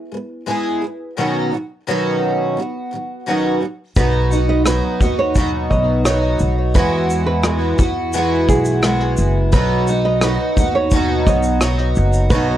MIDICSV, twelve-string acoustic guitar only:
0, 0, Header, 1, 2, 480
1, 0, Start_track
1, 0, Tempo, 696056
1, 807, Time_signature, 4, 2, 24, 8
1, 8671, End_track
2, 0, Start_track
2, 0, Title_t, "Twelve-string acoustic guitar"
2, 0, Program_c, 0, 25
2, 81, Note_on_c, 0, 56, 42
2, 97, Note_on_c, 0, 59, 52
2, 276, Note_off_c, 0, 56, 0
2, 283, Note_off_c, 0, 59, 0
2, 319, Note_on_c, 0, 56, 64
2, 323, Note_on_c, 0, 59, 79
2, 327, Note_on_c, 0, 64, 80
2, 332, Note_on_c, 0, 68, 80
2, 556, Note_off_c, 0, 56, 0
2, 564, Note_on_c, 0, 56, 46
2, 565, Note_off_c, 0, 59, 0
2, 567, Note_off_c, 0, 64, 0
2, 569, Note_off_c, 0, 68, 0
2, 580, Note_on_c, 0, 59, 51
2, 758, Note_off_c, 0, 56, 0
2, 766, Note_off_c, 0, 59, 0
2, 805, Note_on_c, 0, 47, 61
2, 809, Note_on_c, 0, 51, 70
2, 812, Note_on_c, 0, 59, 69
2, 814, Note_on_c, 0, 54, 78
2, 815, Note_on_c, 0, 61, 75
2, 820, Note_on_c, 0, 66, 86
2, 1037, Note_off_c, 0, 47, 0
2, 1045, Note_on_c, 0, 47, 46
2, 1046, Note_off_c, 0, 51, 0
2, 1050, Note_off_c, 0, 59, 0
2, 1051, Note_off_c, 0, 54, 0
2, 1052, Note_off_c, 0, 61, 0
2, 1054, Note_off_c, 0, 66, 0
2, 1054, Note_on_c, 0, 51, 46
2, 1064, Note_on_c, 0, 54, 48
2, 1239, Note_off_c, 0, 47, 0
2, 1243, Note_off_c, 0, 51, 0
2, 1248, Note_off_c, 0, 54, 0
2, 1290, Note_on_c, 0, 47, 68
2, 1292, Note_on_c, 0, 51, 74
2, 1297, Note_on_c, 0, 54, 77
2, 1298, Note_on_c, 0, 59, 78
2, 1300, Note_on_c, 0, 66, 87
2, 1301, Note_on_c, 0, 61, 77
2, 1763, Note_off_c, 0, 47, 0
2, 1771, Note_on_c, 0, 47, 55
2, 1776, Note_off_c, 0, 61, 0
2, 1777, Note_off_c, 0, 51, 0
2, 1780, Note_on_c, 0, 51, 53
2, 1787, Note_off_c, 0, 54, 0
2, 1789, Note_on_c, 0, 54, 64
2, 1963, Note_off_c, 0, 47, 0
2, 1967, Note_off_c, 0, 51, 0
2, 1972, Note_off_c, 0, 54, 0
2, 2007, Note_on_c, 0, 47, 43
2, 2018, Note_on_c, 0, 51, 48
2, 2024, Note_on_c, 0, 54, 48
2, 2201, Note_off_c, 0, 47, 0
2, 2206, Note_off_c, 0, 51, 0
2, 2209, Note_off_c, 0, 54, 0
2, 2250, Note_on_c, 0, 47, 68
2, 2254, Note_on_c, 0, 51, 68
2, 2257, Note_off_c, 0, 59, 0
2, 2259, Note_on_c, 0, 54, 69
2, 2260, Note_off_c, 0, 66, 0
2, 2260, Note_on_c, 0, 59, 74
2, 2262, Note_on_c, 0, 61, 68
2, 2263, Note_on_c, 0, 66, 81
2, 2477, Note_off_c, 0, 47, 0
2, 2485, Note_on_c, 0, 47, 38
2, 2487, Note_off_c, 0, 51, 0
2, 2492, Note_off_c, 0, 54, 0
2, 2495, Note_on_c, 0, 51, 44
2, 2496, Note_off_c, 0, 59, 0
2, 2497, Note_off_c, 0, 61, 0
2, 2497, Note_off_c, 0, 66, 0
2, 2500, Note_on_c, 0, 54, 50
2, 2680, Note_off_c, 0, 47, 0
2, 2685, Note_off_c, 0, 51, 0
2, 2688, Note_off_c, 0, 54, 0
2, 2731, Note_on_c, 0, 47, 69
2, 2734, Note_on_c, 0, 54, 74
2, 2736, Note_on_c, 0, 59, 74
2, 2738, Note_on_c, 0, 63, 75
2, 2742, Note_on_c, 0, 66, 71
2, 2960, Note_off_c, 0, 66, 0
2, 2969, Note_on_c, 0, 66, 46
2, 2971, Note_off_c, 0, 63, 0
2, 2972, Note_off_c, 0, 47, 0
2, 2973, Note_off_c, 0, 54, 0
2, 2974, Note_off_c, 0, 59, 0
2, 2979, Note_on_c, 0, 63, 44
2, 2987, Note_on_c, 0, 59, 35
2, 3211, Note_off_c, 0, 59, 0
2, 3211, Note_off_c, 0, 66, 0
2, 3212, Note_on_c, 0, 54, 58
2, 3216, Note_off_c, 0, 63, 0
2, 3219, Note_on_c, 0, 59, 58
2, 3227, Note_on_c, 0, 63, 64
2, 3231, Note_on_c, 0, 66, 67
2, 3447, Note_off_c, 0, 66, 0
2, 3452, Note_off_c, 0, 54, 0
2, 3455, Note_on_c, 0, 66, 49
2, 3456, Note_off_c, 0, 59, 0
2, 3456, Note_off_c, 0, 63, 0
2, 3464, Note_on_c, 0, 63, 46
2, 3472, Note_on_c, 0, 59, 41
2, 3694, Note_off_c, 0, 66, 0
2, 3695, Note_off_c, 0, 59, 0
2, 3697, Note_off_c, 0, 63, 0
2, 3697, Note_on_c, 0, 47, 70
2, 3700, Note_on_c, 0, 54, 72
2, 3703, Note_on_c, 0, 59, 78
2, 3705, Note_on_c, 0, 63, 83
2, 3707, Note_on_c, 0, 66, 91
2, 4172, Note_off_c, 0, 54, 0
2, 4175, Note_on_c, 0, 54, 58
2, 4176, Note_off_c, 0, 47, 0
2, 4177, Note_off_c, 0, 59, 0
2, 4178, Note_off_c, 0, 63, 0
2, 4180, Note_on_c, 0, 59, 64
2, 4186, Note_on_c, 0, 63, 61
2, 4188, Note_off_c, 0, 66, 0
2, 4191, Note_on_c, 0, 66, 68
2, 4649, Note_on_c, 0, 52, 77
2, 4650, Note_off_c, 0, 54, 0
2, 4652, Note_off_c, 0, 59, 0
2, 4653, Note_on_c, 0, 56, 78
2, 4655, Note_on_c, 0, 59, 74
2, 4656, Note_off_c, 0, 63, 0
2, 4659, Note_off_c, 0, 66, 0
2, 4659, Note_on_c, 0, 64, 79
2, 4661, Note_on_c, 0, 66, 77
2, 5123, Note_off_c, 0, 56, 0
2, 5131, Note_on_c, 0, 56, 54
2, 5132, Note_off_c, 0, 52, 0
2, 5135, Note_off_c, 0, 59, 0
2, 5135, Note_off_c, 0, 64, 0
2, 5138, Note_on_c, 0, 59, 66
2, 5143, Note_on_c, 0, 64, 73
2, 5144, Note_off_c, 0, 66, 0
2, 5147, Note_on_c, 0, 66, 60
2, 5356, Note_off_c, 0, 66, 0
2, 5364, Note_off_c, 0, 64, 0
2, 5364, Note_on_c, 0, 66, 51
2, 5372, Note_off_c, 0, 59, 0
2, 5372, Note_on_c, 0, 64, 46
2, 5373, Note_off_c, 0, 56, 0
2, 5380, Note_on_c, 0, 59, 43
2, 5608, Note_off_c, 0, 59, 0
2, 5609, Note_off_c, 0, 66, 0
2, 5611, Note_off_c, 0, 64, 0
2, 5612, Note_on_c, 0, 52, 79
2, 5613, Note_on_c, 0, 56, 74
2, 5616, Note_on_c, 0, 59, 80
2, 5619, Note_on_c, 0, 64, 75
2, 5622, Note_on_c, 0, 66, 91
2, 6075, Note_off_c, 0, 56, 0
2, 6084, Note_on_c, 0, 56, 59
2, 6091, Note_off_c, 0, 59, 0
2, 6092, Note_off_c, 0, 64, 0
2, 6093, Note_off_c, 0, 52, 0
2, 6094, Note_on_c, 0, 59, 62
2, 6100, Note_on_c, 0, 64, 68
2, 6102, Note_off_c, 0, 66, 0
2, 6104, Note_on_c, 0, 66, 63
2, 6564, Note_off_c, 0, 56, 0
2, 6565, Note_on_c, 0, 47, 80
2, 6567, Note_on_c, 0, 54, 84
2, 6568, Note_off_c, 0, 59, 0
2, 6568, Note_off_c, 0, 64, 0
2, 6571, Note_on_c, 0, 59, 89
2, 6571, Note_on_c, 0, 63, 80
2, 6573, Note_off_c, 0, 66, 0
2, 6576, Note_on_c, 0, 66, 86
2, 6798, Note_off_c, 0, 66, 0
2, 6806, Note_on_c, 0, 66, 48
2, 6809, Note_off_c, 0, 47, 0
2, 6809, Note_off_c, 0, 63, 0
2, 6810, Note_off_c, 0, 54, 0
2, 6812, Note_off_c, 0, 59, 0
2, 6818, Note_on_c, 0, 63, 49
2, 6825, Note_on_c, 0, 59, 42
2, 7049, Note_off_c, 0, 66, 0
2, 7052, Note_off_c, 0, 59, 0
2, 7052, Note_on_c, 0, 54, 61
2, 7055, Note_off_c, 0, 63, 0
2, 7060, Note_on_c, 0, 59, 60
2, 7062, Note_on_c, 0, 63, 68
2, 7069, Note_on_c, 0, 66, 66
2, 7288, Note_off_c, 0, 66, 0
2, 7292, Note_off_c, 0, 54, 0
2, 7295, Note_off_c, 0, 63, 0
2, 7296, Note_off_c, 0, 59, 0
2, 7296, Note_on_c, 0, 66, 52
2, 7304, Note_on_c, 0, 63, 47
2, 7312, Note_on_c, 0, 59, 43
2, 7531, Note_off_c, 0, 59, 0
2, 7531, Note_on_c, 0, 47, 82
2, 7532, Note_off_c, 0, 63, 0
2, 7534, Note_off_c, 0, 66, 0
2, 7534, Note_on_c, 0, 54, 84
2, 7539, Note_on_c, 0, 59, 81
2, 7540, Note_on_c, 0, 63, 92
2, 7542, Note_on_c, 0, 66, 91
2, 7997, Note_off_c, 0, 54, 0
2, 8005, Note_off_c, 0, 59, 0
2, 8005, Note_on_c, 0, 54, 64
2, 8010, Note_off_c, 0, 47, 0
2, 8010, Note_off_c, 0, 63, 0
2, 8013, Note_on_c, 0, 59, 60
2, 8016, Note_off_c, 0, 66, 0
2, 8018, Note_on_c, 0, 63, 63
2, 8023, Note_on_c, 0, 66, 74
2, 8483, Note_off_c, 0, 54, 0
2, 8485, Note_off_c, 0, 59, 0
2, 8487, Note_on_c, 0, 47, 75
2, 8490, Note_off_c, 0, 63, 0
2, 8491, Note_off_c, 0, 66, 0
2, 8491, Note_on_c, 0, 54, 84
2, 8493, Note_on_c, 0, 59, 86
2, 8498, Note_on_c, 0, 63, 91
2, 8500, Note_on_c, 0, 66, 82
2, 8671, Note_off_c, 0, 47, 0
2, 8671, Note_off_c, 0, 54, 0
2, 8671, Note_off_c, 0, 59, 0
2, 8671, Note_off_c, 0, 63, 0
2, 8671, Note_off_c, 0, 66, 0
2, 8671, End_track
0, 0, End_of_file